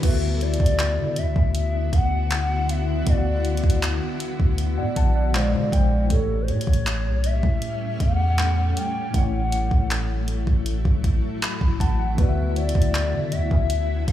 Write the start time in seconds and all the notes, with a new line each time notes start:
0.00 D2 D3 B3 E4 F#4 B4, kick, closed hi-hat, crash
0.04 B3 F#4 E5
0.41 D5, closed hi-hat
0.54 closed hi-hat
0.60 D2, kick
0.66 closed hi-hat
0.79 clap, closed hi-hat
0.98 D3
1.16 D2 E5, closed hi-hat
1.36 D2, kick
1.55 closed hi-hat
1.93 D2 F#5, kick, closed hi-hat
2.31 clap, closed hi-hat
2.69 E5, closed hi-hat
3.03 D2 D3 B3, kick, closed hi-hat
3.08 F#4 D5 F5
3.18 F#5
3.45 closed hi-hat
3.57 closed hi-hat
3.64 D2, kick
3.70 closed hi-hat
3.83 clap, closed hi-hat
4.20 closed hi-hat
4.40 D2, kick
4.58 closed hi-hat
4.78 A2 D5 F#5
4.96 A#1 F#5 A5, kick, closed hi-hat
5.15 D5 F#5
5.33 A#2 G#3 C5 F5, clap, closed hi-hat
5.37 C#5
5.43 D5
5.54 D3
5.72 A#1 G5, kick, closed hi-hat
6.07 A1 A2 A3, kick, closed hi-hat
6.11 G3 A3 C#4 G4 A4 C#5
6.42 C5
6.48 A2 C#5, closed hi-hat
6.61 closed hi-hat
6.67 A1, kick
6.73 closed hi-hat
6.87 clap, closed hi-hat
7.05 B1
7.24 E5, closed hi-hat
7.43 A2, kick
7.62 closed hi-hat
8.00 E2 F#5, kick, closed hi-hat
8.38 clap, closed hi-hat
8.77 G5, closed hi-hat
9.10 A1 A2 A3 E4, kick, closed hi-hat
9.14 F#3 E4 C#5 F#5
9.52 closed hi-hat
9.71 A1, kick
9.91 clap, closed hi-hat
10.28 closed hi-hat
10.47 A1, kick
10.66 closed hi-hat
10.85 A1, kick
11.04 kick, closed hi-hat
11.42 B5, clap, closed hi-hat
11.61 A1, kick
11.80 F#5 A5, kick, closed hi-hat
11.99 F#5
12.14 D2 D3 B3, kick, closed hi-hat
12.18 F#4 B4
12.22 D5
12.29 E5
12.56 D5, closed hi-hat
12.69 closed hi-hat
12.75 D2, kick
12.82 closed hi-hat
12.95 clap, closed hi-hat
13.13 D3
13.32 D2 E5, closed hi-hat
13.51 D2, kick
13.70 closed hi-hat
14.08 D2 F#5, kick, closed hi-hat